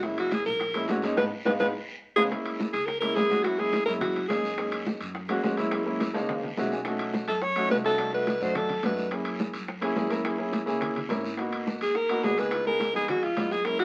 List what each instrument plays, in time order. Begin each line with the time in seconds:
Already playing: upright bass F#1
0.03 grand piano G#3 A#3 C#4 E4, alto saxophone E4, high bongo, high conga, long guiro
0.18 alto saxophone F#4, high bongo, high conga, high timbale
0.31 alto saxophone G#4, high bongo, high conga, high timbale, short guiro
0.45 upright bass A#1, alto saxophone A#4, high conga, short guiro
0.60 high bongo, high conga, high timbale, long guiro
0.74 grand piano G#3 A#3 C#4 E4, high bongo, high conga, high timbale
0.88 upright bass G#1, grand piano G#3 A#3 C#4 F#4, high bongo, low bongo, high conga, high timbale, low timbale, short guiro
1.02 grand piano G#3 A#3 C#4 D#4, high bongo, high conga, high timbale, short guiro
1.17 upright bass G#1, grand piano G#3 B3 D#4, alto saxophone B4, high bongo, high conga, high timbale, long guiro
1.45 upright bass G#1, grand piano G#3 B3 D#4, alto saxophone B4, high bongo, high conga, high timbale, long guiro
1.60 upright bass G#1, grand piano G#3 B3 D#4, alto saxophone B4, high bongo, high conga, high timbale, long guiro
2.16 upright bass C#2, grand piano G#3 B3 C#4, alto saxophone G#4, high bongo, high conga, high timbale, long guiro
2.31 grand piano G#3 A#3 C#4 E4, high bongo, high conga, high timbale, long guiro
2.46 high bongo, high conga, high timbale
2.60 high bongo, high conga, low timbale, short guiro
2.73 upright bass C#2, alto saxophone G#4, high conga, high timbale, short guiro
2.86 alto saxophone A#4, high bongo, high conga, long guiro
3.01 grand piano G#3 A#3 C#4 E4, alto saxophone A#4, high bongo, high conga, high timbale
3.15 upright bass F#2, grand piano G#3 A#3 C#4 E4, alto saxophone G#4, high bongo, low bongo, high conga, low timbale, short guiro
3.29 grand piano G#3 A#3 C#4 F#4, high bongo, high conga, high timbale, short guiro
3.43 grand piano G#3 A#3 C#4 E4, alto saxophone F#4, high bongo, high conga, high timbale, long guiro
3.58 grand piano G#3 A#3 C#4 E4, alto saxophone G#4, high bongo, high conga
3.73 high bongo, high conga, high timbale, low timbale, short guiro
3.85 upright bass F#2, grand piano G#3 A#3 C#4 E4, alto saxophone A#4, high conga, short guiro
4.01 alto saxophone F#4, high bongo, high conga, low conga, high timbale, long guiro
4.15 high bongo, high conga, high timbale
4.28 upright bass F#2, grand piano G#3 A#3 C#4 D#4, alto saxophone G#4, high bongo, low bongo, high conga, high timbale, low timbale, short guiro
4.44 high bongo, high conga, short guiro
4.58 grand piano G#3 A#3 C#4 D#4, high bongo, high conga, high timbale, long guiro
4.72 high bongo, high conga, high timbale
4.86 high bongo, high conga, low timbale, short guiro
5.00 upright bass F#2, high conga, high timbale, short guiro
5.15 high bongo, high conga, long guiro
5.29 grand piano G#3 A#3 C#4 F#4, high bongo, high conga, high timbale
5.43 upright bass F#2, grand piano G#3 A#3 C#4 F#4, high bongo, low bongo, high conga, low timbale, short guiro
5.57 grand piano G#3 A#3 C#4 E4, high bongo, high conga, high timbale, short guiro
5.71 grand piano G#3 A#3 C#4 E4, high bongo, high conga, high timbale, long guiro
5.85 grand piano G#3 A#3 C#4 E4, high bongo, high conga
6.00 high bongo, high conga, high timbale, low timbale, short guiro
6.13 upright bass C#2, grand piano G#3 A#3 C#4 D#4, high conga, high timbale, short guiro
6.29 high bongo, high conga, low conga, high timbale, long guiro
6.43 high bongo, high conga, low conga, high timbale
6.57 upright bass B1, grand piano G#3 A#3 C#4 F#4 E5, high bongo, low bongo, high conga, low timbale, short guiro
6.71 grand piano G#5, high bongo, high conga, low timbale, short guiro
6.85 grand piano A3 C#4 D#4 F#4, high bongo, high conga, high timbale, long guiro
6.99 high bongo, high conga, high timbale
7.13 high bongo, high conga, low timbale, short guiro
7.28 upright bass F#2, alto saxophone A4, high conga, high timbale, short guiro
7.42 alto saxophone C#5, high bongo, high conga
7.56 grand piano A3 C#4 D#4 F#4, high bongo, high conga, high timbale
7.70 upright bass C2, grand piano A3 C#4 D#4 F#4, alto saxophone B4, high bongo, low bongo, high conga, low timbale, short guiro
7.84 grand piano A3 C#4 D#4 F#4, alto saxophone A4, high bongo, high conga, high timbale, short guiro
7.98 grand piano A3 D4 D#4 F#4, high bongo, high conga, high timbale, long guiro
8.13 grand piano A3 D4 D#4 F#4, alto saxophone B4, high bongo, high conga
8.27 high bongo, high conga, high timbale, low timbale, short guiro
8.41 upright bass F#2, grand piano A3 D4 D#4 F#4, alto saxophone C5, high conga, short guiro
8.55 alto saxophone A4, high bongo, high conga, low conga, high timbale, long guiro
8.69 high bongo, high conga, low conga, high timbale
8.83 upright bass F#2, grand piano A3 D4 D#4 F#4, alto saxophone B4, high bongo, low bongo, high conga, high timbale, low timbale, short guiro
8.97 high bongo, high conga, short guiro
9.11 grand piano A#3 C#4 E4 G#4, high bongo, high conga, high timbale, long guiro
9.25 high bongo, high conga, high timbale
9.39 high bongo, high conga, low timbale, short guiro
9.53 upright bass F#2, high conga, high timbale, short guiro
9.68 high bongo, high conga
9.81 grand piano A#3 C#4 E4 G#4, high bongo, high conga, high timbale
9.96 upright bass F#2, grand piano A#3 C#4 E4 G#4, high bongo, low bongo, high conga, low timbale, short guiro
10.09 grand piano A#3 C#4 E4 A#4, high bongo, high conga, high timbale, short guiro
10.24 grand piano A#3 C#4 E4 G#4, high bongo, high conga, high timbale, long guiro
10.38 grand piano A#3 C#4 E4 G#4, high bongo, high conga
10.52 high bongo, high conga, high timbale, low timbale, short guiro
10.66 upright bass C#2, grand piano A#3 C#4 E4 G#4, high conga, short guiro
10.81 high bongo, high conga, low conga, high timbale
10.95 high bongo, high conga, low conga, high timbale
11.09 upright bass G#1, grand piano A#3 C#4 E4 A#4, high bongo, low bongo, high conga, high timbale, low timbale, short guiro
11.23 high bongo, high conga, short guiro
11.37 grand piano A#3 B3 D#4 F#4, high bongo, high conga, high timbale, long guiro
11.52 high bongo, high conga, high timbale
11.67 high bongo, high conga, low timbale, short guiro
11.81 upright bass D#2, alto saxophone G#4, high conga, high timbale, short guiro
11.95 alto saxophone A#4, high bongo, high conga
12.09 grand piano A#3 B3 D#4 F#4, high bongo, high conga, high timbale
12.23 upright bass C#2, grand piano A#3 B3 D#4 F#4, alto saxophone G#4, high bongo, low bongo, high conga, low timbale, short guiro
12.37 grand piano A#3 B3 D#4 G#4, alto saxophone B4, high bongo, high conga, high timbale, short guiro
12.51 grand piano G#3 B3 D#4 F4, high bongo, high conga, high timbale, long guiro
12.65 grand piano G#3 B3 D#4 G#4, alto saxophone A#4, high bongo, high conga
12.79 high bongo, high conga, high timbale, low timbale, short guiro
12.93 upright bass F2, grand piano G#3 B3 D#4 G#4, alto saxophone G#4, high conga, short guiro
13.08 alto saxophone F#4, high bongo, high conga, low conga, high timbale
13.23 alto saxophone F4, high bongo, high conga, high timbale
13.36 upright bass F#2, grand piano G#3 B3 D#4 F4, high bongo, low bongo, high conga, high timbale, low timbale, short guiro
13.51 alto saxophone G#4, high bongo, high conga, short guiro
13.65 grand piano G#3 A#3 C#4 E4, alto saxophone A#4, high bongo, high conga, high timbale, long guiro
13.79 alto saxophone F#4, high bongo, high conga, high timbale